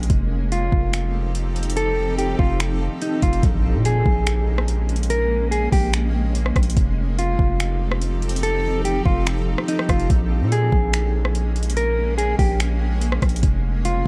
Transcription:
0.03 closed hi-hat medium
0.10 0.70 F1 loud
0.10 3.40 F3 medium
0.10 3.40 C4 medium
0.10 3.40 D#4 medium
0.10 3.40 G4 medium
0.10 3.40 A4 medium
0.10 kick loud
0.10 closed hi-hat medium
0.52 1.73 F4 medium
0.52 closed hi-hat medium
0.72 2.35 F1 loud
0.72 kick loud
0.93 finger snap loud
0.93 closed hi-hat medium
1.35 closed hi-hat medium
1.56 closed hi-hat soft
1.63 closed hi-hat medium
1.70 closed hi-hat medium
1.77 2.16 A4 loud
1.77 closed hi-hat medium
2.18 2.38 G4 medium
2.18 closed hi-hat medium
2.39 2.89 F1 loud
2.39 2.59 F4 medium
2.39 kick loud
2.60 finger snap loud
2.60 closed hi-hat medium
3.02 3.22 D#4 medium
3.02 closed hi-hat medium
3.22 3.42 F1 loud
3.22 3.42 F4 medium
3.22 kick medium
3.22 closed hi-hat medium
3.33 closed hi-hat soft
3.43 3.76 A#1 loud
3.43 6.73 G#3 medium
3.43 6.73 A#3 medium
3.43 6.73 C#4 medium
3.43 kick loud
3.43 closed hi-hat medium
3.43 impact medium
3.74 4.04 A#2 loud
3.85 5.06 G#4 medium
3.85 closed hi-hat medium
4.06 5.68 A#1 loud
4.06 kick loud
4.27 finger snap loud
4.27 closed hi-hat medium
4.58 cross-stick loud
4.68 closed hi-hat medium
4.89 closed hi-hat soft
4.96 closed hi-hat medium
5.03 closed hi-hat medium
5.10 5.49 A#4 loud
5.10 closed hi-hat medium
5.51 5.71 G#4 medium
5.51 closed hi-hat medium
5.72 6.52 A#1 loud
5.72 5.92 G4 medium
5.72 kick loud
5.72 open hi-hat medium
5.93 finger snap loud
5.93 closed hi-hat medium
6.35 closed hi-hat medium
6.46 cross-stick medium
6.56 6.76 A#1 loud
6.56 kick loud
6.56 cross-stick loud
6.56 closed hi-hat soft
6.63 closed hi-hat medium
6.70 closed hi-hat medium
6.77 7.37 F1 loud
6.77 10.07 F3 medium
6.77 10.07 C4 medium
6.77 10.07 D#4 medium
6.77 10.07 G4 medium
6.77 10.07 A4 medium
6.77 kick loud
6.77 closed hi-hat medium
7.19 8.39 F4 medium
7.19 closed hi-hat medium
7.39 9.02 F1 loud
7.39 kick loud
7.60 finger snap loud
7.60 closed hi-hat medium
7.92 cross-stick loud
8.02 closed hi-hat medium
8.22 closed hi-hat soft
8.29 closed hi-hat medium
8.36 closed hi-hat medium
8.43 8.82 A4 loud
8.43 closed hi-hat medium
8.85 9.05 G4 medium
8.85 closed hi-hat medium
9.06 9.56 F1 loud
9.06 9.25 F4 medium
9.06 kick loud
9.27 finger snap loud
9.27 closed hi-hat medium
9.58 cross-stick loud
9.68 9.88 D#4 medium
9.68 closed hi-hat medium
9.79 cross-stick loud
9.89 10.09 F1 loud
9.89 10.09 F4 medium
9.89 kick loud
9.89 cross-stick loud
9.89 closed hi-hat medium
10.00 closed hi-hat soft
10.10 10.43 A#1 loud
10.10 13.40 G#3 medium
10.10 13.40 A#3 medium
10.10 13.40 C#4 medium
10.10 kick loud
10.10 closed hi-hat medium
10.41 10.71 A#2 loud
10.52 11.73 G#4 medium
10.52 closed hi-hat medium
10.72 12.35 A#1 loud
10.72 kick loud
10.93 finger snap loud
10.93 closed hi-hat medium
11.25 cross-stick loud
11.35 closed hi-hat medium
11.56 closed hi-hat soft
11.63 closed hi-hat medium
11.70 closed hi-hat medium
11.77 12.16 A#4 loud
11.77 closed hi-hat medium
12.18 12.38 G#4 medium
12.18 closed hi-hat medium
12.39 13.19 A#1 loud
12.39 12.59 G4 medium
12.39 kick loud
12.39 open hi-hat medium
12.60 finger snap loud
12.60 closed hi-hat medium
13.01 closed hi-hat medium
13.12 cross-stick medium
13.22 13.42 A#1 loud
13.22 kick loud
13.22 cross-stick loud
13.22 closed hi-hat soft
13.29 closed hi-hat medium
13.36 closed hi-hat medium
13.43 14.03 F1 loud
13.43 14.08 F3 medium
13.43 14.08 C4 medium
13.43 14.08 D#4 medium
13.43 14.08 G4 medium
13.43 14.08 A4 medium
13.43 kick loud
13.43 closed hi-hat medium
13.85 14.08 F4 medium
13.85 closed hi-hat medium

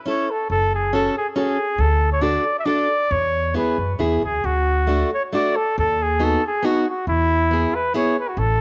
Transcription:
0.06 0.27 C#4 medium
0.06 0.28 E4 medium
0.06 0.28 A4 medium
0.06 0.32 C#5 medium
0.31 0.50 A4 medium
0.50 1.06 F#1 medium
0.50 0.72 A4 loud
0.75 0.96 G#4 medium
0.93 1.14 C#4 medium
0.93 1.14 F#4 medium
0.93 1.17 A4 medium
0.93 1.15 A4 medium
1.18 1.27 G#4 medium
1.36 1.57 C#4 medium
1.36 1.57 F#4 medium
1.36 1.82 G#4 medium
1.36 1.58 A4 medium
1.78 2.35 D2 medium
1.78 2.12 A4 loud
2.12 2.24 C#5 medium
2.21 2.43 D4 medium
2.21 2.44 F#4 medium
2.21 2.44 A4 medium
2.21 2.59 D5 medium
2.59 2.67 E5 medium
2.65 2.87 D4 medium
2.65 2.88 F#4 medium
2.65 2.88 A4 medium
2.65 3.13 D5 loud
3.11 3.55 E2 medium
3.11 3.55 C#5 loud
3.54 3.76 B3 medium
3.54 3.76 E4 soft
3.54 3.77 G#4 medium
3.54 3.94 B4 medium
3.78 3.97 F#2 medium
3.99 4.21 E2 medium
3.99 4.21 B3 medium
3.99 4.21 E4 medium
3.99 4.22 G#4 medium
4.22 4.42 D2 medium
4.22 4.47 G#4 medium
4.44 5.02 D2 medium
4.44 5.13 F#4 medium
4.87 5.09 A3 medium
4.87 5.10 D4 medium
4.87 5.10 F#4 medium
5.14 5.23 C#5 medium
5.33 5.54 A3 medium
5.33 5.55 D4 medium
5.33 5.55 F#4 medium
5.33 5.57 D5 medium
5.56 5.77 A4 medium
5.78 6.34 D#2 medium
5.78 6.04 A4 loud
6.02 6.25 G#4 medium
6.19 6.41 B3 medium
6.19 6.41 D#4 medium
6.19 6.42 F#4 medium
6.24 6.46 A4 medium
6.46 6.67 G#4 medium
6.63 6.84 B3 medium
6.63 6.85 D#4 medium
6.63 6.85 F#4 medium
6.63 6.88 F#4 medium
6.90 7.08 F#4 medium
7.07 7.64 E2 medium
7.07 7.77 E4 loud
7.51 7.72 B3 medium
7.51 7.73 E4 medium
7.51 7.73 G#4 medium
7.75 7.95 B4 medium
7.94 8.15 B3 medium
7.94 8.15 E4 medium
7.94 8.16 G#4 medium
7.94 8.17 C#5 medium
8.19 8.30 B4 medium
8.29 8.40 F#4 medium
8.37 8.61 A1 medium
8.37 8.61 A4 medium

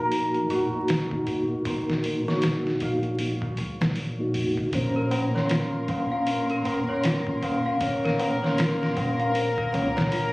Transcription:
0.00 0.50 A#1 medium
0.00 0.66 A#2 medium
0.00 0.67 A#3 medium
0.00 0.68 D#4 medium
0.00 0.69 F#4 medium
0.00 2.80 A#4 medium
0.00 1.66 C5 medium
0.12 open hi-hat medium
0.34 closed hi-hat soft
0.50 0.70 F1 medium
0.50 2.88 F#4 medium
0.50 open hi-hat medium
0.72 1.06 A#2 medium
0.72 1.06 A#3 medium
0.72 1.06 D#4 medium
0.72 1.07 F#4 medium
0.88 snare loud
0.88 open hi-hat medium
1.11 1.62 A#2 medium
1.11 1.62 A#3 medium
1.11 1.63 D#4 medium
1.11 1.63 F#4 loud
1.11 kick medium
1.27 kick medium
1.27 open hi-hat medium
1.65 2.21 A#2 medium
1.65 2.22 A#3 medium
1.65 2.22 D#4 medium
1.65 2.22 A#4 medium
1.65 2.34 C5 medium
1.65 kick loud
1.65 open hi-hat medium
1.90 snare soft
2.04 open hi-hat medium
2.25 3.15 A#2 medium
2.25 3.16 A#3 medium
2.25 3.16 D#4 medium
2.25 4.83 C#5 medium
2.25 snare soft
2.30 3.17 F#4 loud
2.42 snare loud
2.42 open hi-hat medium
2.67 snare soft
2.80 3.55 A#1 medium
2.80 5.04 F5 medium
2.80 kick medium
2.80 open hi-hat medium
3.03 closed hi-hat soft
3.19 3.33 A#2 medium
3.19 3.34 A#3 medium
3.19 3.34 D#4 medium
3.19 3.34 F#4 medium
3.19 open hi-hat medium
3.42 kick medium
3.57 3.78 C#2 medium
3.57 open hi-hat medium
3.81 4.34 A#1 medium
3.81 snare loud
3.96 open hi-hat medium
4.18 4.69 A#2 medium
4.18 4.69 A#3 medium
4.18 4.70 D#4 medium
4.18 4.70 F#4 medium
4.34 4.55 F1 medium
4.34 open hi-hat medium
4.57 kick medium
4.72 5.86 A#1 loud
4.72 5.29 A#2 medium
4.72 10.33 A#3 medium
4.72 5.29 A#3 medium
4.72 5.30 C#4 medium
4.72 10.33 A#4 medium
4.72 5.30 C5 medium
4.72 kick loud
4.72 open hi-hat medium
4.72 tabla na soft
4.96 5.32 A#4 medium
5.11 open hi-hat medium
5.11 tabla na medium
5.32 6.82 A#2 medium
5.32 6.83 A#3 medium
5.32 6.83 C#4 medium
5.32 5.49 C#5 medium
5.32 snare soft
5.32 tabla na soft
5.37 6.84 C6 medium
5.49 5.72 F4 medium
5.49 snare loud
5.49 open hi-hat medium
5.49 tabla na soft
5.88 6.66 A#1 medium
5.88 6.10 F5 medium
5.88 kick medium
5.88 open hi-hat medium
5.88 tabla na medium
6.11 6.21 F5 medium
6.11 tabla na soft
6.27 open hi-hat medium
6.27 tabla na soft
6.50 6.87 A#4 medium
6.50 closed hi-hat soft
6.65 6.86 F1 medium
6.65 open hi-hat medium
6.65 tabla na medium
6.88 7.21 A#2 medium
6.88 7.22 A#3 medium
6.88 7.22 C#4 medium
6.88 7.03 C#5 medium
6.88 7.22 C6 medium
6.88 tabla na soft
7.04 7.26 F4 medium
7.04 snare loud
7.04 open hi-hat medium
7.04 tabla na soft
7.26 7.77 A#2 medium
7.26 7.77 A#3 medium
7.26 7.78 C#4 medium
7.26 7.78 C6 loud
7.26 kick medium
7.43 7.63 F5 medium
7.43 kick medium
7.43 open hi-hat medium
7.43 tabla na medium
7.65 7.75 F5 loud
7.65 tabla na medium
7.80 8.36 A#2 medium
7.80 8.37 A#3 medium
7.80 8.37 C#4 medium
7.80 8.38 C#5 medium
7.80 kick loud
7.80 open hi-hat medium
7.80 tabla na soft
8.05 8.40 A#4 medium
8.05 snare soft
8.19 open hi-hat medium
8.19 tabla na medium
8.40 9.30 A#2 medium
8.40 9.31 A#3 medium
8.40 9.32 C#4 medium
8.40 8.57 C#5 medium
8.40 snare soft
8.40 tabla na medium
8.45 9.33 C6 medium
8.58 8.80 F4 medium
8.58 snare loud
8.58 open hi-hat medium
8.58 tabla na soft
8.83 snare medium
8.97 9.71 A#1 loud
8.97 9.17 F5 medium
8.97 kick medium
8.97 open hi-hat medium
8.97 tabla na medium
9.19 9.28 F5 loud
9.19 closed hi-hat soft
9.19 tabla na medium
9.34 9.48 A#2 medium
9.34 9.49 A#3 medium
9.34 9.49 C#4 medium
9.34 9.50 C5 medium
9.34 open hi-hat medium
9.34 tabla na soft
9.58 9.94 A#4 medium
9.58 kick medium
9.72 9.94 C#2 loud
9.72 9.87 A#2 medium
9.72 9.87 A#3 medium
9.72 9.88 C#4 medium
9.72 9.88 C#5 loud
9.72 open hi-hat medium
9.72 tabla na medium
9.96 10.33 A#1 medium
9.96 10.11 C#5 medium
9.96 snare loud
9.96 tabla na soft
10.12 10.33 F4 medium
10.12 open hi-hat medium
10.12 tabla na soft

